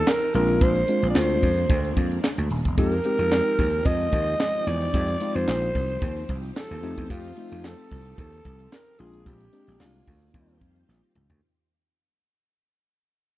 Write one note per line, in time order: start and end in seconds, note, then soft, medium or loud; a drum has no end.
0.00 0.31 F3 medium
0.00 0.31 C4 medium
0.00 0.31 D#4 medium
0.00 0.10 A4 loud
0.00 0.32 A4 loud
0.00 0.31 G5 medium
0.07 0.35 A#4 loud
0.07 snare loud
0.07 clap medium
0.21 closed hi-hat medium
0.34 0.55 A#1 loud
0.34 0.78 G#3 medium
0.34 2.75 G#3 medium
0.34 2.75 A#3 medium
0.34 0.79 C4 medium
0.34 2.75 D4 medium
0.34 0.79 D4 medium
0.34 0.79 F4 loud
0.34 0.64 A#4 loud
0.34 closed hi-hat medium
0.48 closed hi-hat medium
0.61 0.82 A#1 medium
0.61 1.09 C5 loud
0.61 kick loud
0.61 closed hi-hat loud
0.75 closed hi-hat medium
0.88 1.49 G#3 medium
0.88 1.49 C4 medium
0.88 1.49 D4 medium
0.88 1.49 F4 medium
0.88 closed hi-hat medium
1.02 1.13 A#1 medium
1.02 closed hi-hat medium
1.10 1.19 D5 medium
1.15 1.36 D2 loud
1.15 1.97 C5 loud
1.15 snare loud
1.15 clap medium
1.30 closed hi-hat medium
1.43 1.64 F2 medium
1.43 kick medium
1.43 open hi-hat medium
1.57 closed hi-hat medium
1.70 1.91 D2 medium
1.70 kick loud
1.70 closed hi-hat medium
1.85 closed hi-hat medium
1.97 2.18 F2 loud
1.97 kick medium
1.97 closed hi-hat medium
2.11 closed hi-hat soft
2.24 snare loud
2.24 clap medium
2.38 2.48 D2 loud
2.38 closed hi-hat soft
2.50 2.62 D#1 loud
2.50 open hi-hat medium
2.65 2.75 E1 medium
2.65 kick medium
2.65 closed hi-hat medium
2.78 2.99 F2 loud
2.78 8.95 F3 medium
2.78 2.93 G#3 medium
2.78 6.79 G#3 loud
2.78 8.96 C4 medium
2.78 2.94 C4 medium
2.78 8.96 D#4 medium
2.78 2.94 D#4 medium
2.78 8.96 G4 medium
2.78 2.94 G4 medium
2.78 3.88 A#4 loud
2.78 kick loud
2.78 closed hi-hat medium
2.92 closed hi-hat medium
3.04 3.65 G#3 medium
3.04 3.65 C4 medium
3.04 3.66 D#4 medium
3.04 3.66 G4 medium
3.04 closed hi-hat loud
3.19 3.40 F2 loud
3.19 closed hi-hat medium
3.32 snare loud
3.32 clap medium
3.46 closed hi-hat medium
3.58 3.80 D#2 medium
3.58 kick loud
3.58 open hi-hat medium
3.73 closed hi-hat medium
3.85 4.07 F2 medium
3.85 4.68 D#5 loud
3.85 kick loud
3.85 closed hi-hat medium
4.00 closed hi-hat soft
4.12 4.34 D#2 loud
4.12 kick medium
4.12 closed hi-hat medium
4.27 closed hi-hat soft
4.40 snare loud
4.40 clap medium
4.54 closed hi-hat soft
4.67 4.88 E2 medium
4.67 5.37 D5 loud
4.67 closed hi-hat medium
4.81 closed hi-hat medium
4.94 5.15 F2 loud
4.94 5.10 G#3 medium
4.94 5.10 C4 medium
4.94 5.10 D#4 medium
4.94 5.10 G4 medium
4.94 kick loud
4.94 closed hi-hat loud
5.08 closed hi-hat medium
5.20 5.81 G#3 medium
5.20 5.82 C4 medium
5.20 5.82 D#4 medium
5.20 5.82 F4 medium
5.20 closed hi-hat medium
5.35 5.45 F2 loud
5.35 6.43 C5 loud
5.35 closed hi-hat medium
5.48 5.69 A#1 medium
5.48 snare loud
5.48 clap medium
5.62 closed hi-hat medium
5.75 5.96 C2 medium
5.75 kick medium
5.75 open hi-hat medium
5.89 closed hi-hat medium
6.02 6.23 D#2 loud
6.02 kick loud
6.02 closed hi-hat medium
6.17 closed hi-hat soft
6.29 6.50 C2 loud
6.29 kick loud
6.29 closed hi-hat medium
6.44 closed hi-hat medium
6.56 7.12 A4 medium
6.56 snare loud
6.56 clap medium
6.71 6.81 D#2 loud
6.71 closed hi-hat soft
6.83 6.94 F2 loud
6.83 7.27 A3 medium
6.83 7.27 C4 medium
6.83 7.27 D#4 medium
6.83 7.27 G4 medium
6.83 8.97 A4 medium
6.83 closed hi-hat medium
6.97 7.08 E2 medium
6.97 kick medium
6.97 closed hi-hat soft
7.10 7.31 F2 loud
7.10 7.67 F4 medium
7.10 kick loud
7.10 closed hi-hat loud
7.24 closed hi-hat medium
7.37 7.98 A3 medium
7.37 7.98 C4 medium
7.37 7.98 D#4 medium
7.37 7.98 F4 medium
7.37 closed hi-hat loud
7.51 7.73 F2 loud
7.51 closed hi-hat medium
7.64 8.18 A4 medium
7.64 snare medium
7.64 clap medium
7.79 closed hi-hat medium
7.91 8.12 C2 medium
7.91 kick medium
7.91 open hi-hat medium
8.06 closed hi-hat medium
8.18 8.39 D#2 medium
8.18 8.74 A4 medium
8.18 kick loud
8.18 closed hi-hat medium
8.33 closed hi-hat soft
8.45 8.66 C2 loud
8.45 kick medium
8.45 closed hi-hat medium
8.60 closed hi-hat soft
8.72 9.01 A#4 medium
8.72 snare loud
8.72 clap medium
8.87 closed hi-hat soft
8.99 9.21 A#1 medium
8.99 9.43 G#3 medium
8.99 10.33 G#3 medium
8.99 11.40 A#3 medium
8.99 9.43 C4 medium
8.99 10.33 D4 medium
8.99 9.43 D4 medium
8.99 9.43 F4 medium
8.99 9.29 G#4 medium
8.99 closed hi-hat medium
9.13 closed hi-hat medium
9.26 9.47 A#1 loud
9.26 9.80 G4 loud
9.26 kick loud
9.26 closed hi-hat loud
9.40 closed hi-hat medium
9.53 10.14 G#3 medium
9.53 10.14 C4 medium
9.53 10.14 D4 medium
9.53 10.14 G4 medium
9.53 closed hi-hat loud
9.67 9.78 A#1 medium
9.67 closed hi-hat medium
9.80 10.01 C2 loud
9.80 10.58 F4 medium
9.80 snare medium
9.80 clap medium
9.94 closed hi-hat medium
10.07 10.29 D2 medium
10.07 kick loud
10.07 open hi-hat medium
10.22 closed hi-hat soft
10.34 10.62 D#2 loud
10.34 11.41 D#3 medium
10.34 11.21 G3 medium
10.34 11.21 A#3 medium
10.34 11.41 C4 medium
10.34 11.21 C4 medium
10.34 11.41 F4 medium
10.34 11.21 F4 medium
10.34 11.41 G4 medium
10.34 kick loud
10.34 closed hi-hat medium
10.49 closed hi-hat soft
10.61 10.83 F2 loud
10.61 kick medium
10.61 closed hi-hat medium
10.76 closed hi-hat soft
10.89 11.00 A#1 medium
10.89 snare medium
11.15 11.27 C#2 loud
11.15 mid tom medium
11.30 11.40 D2 loud
11.30 floor tom medium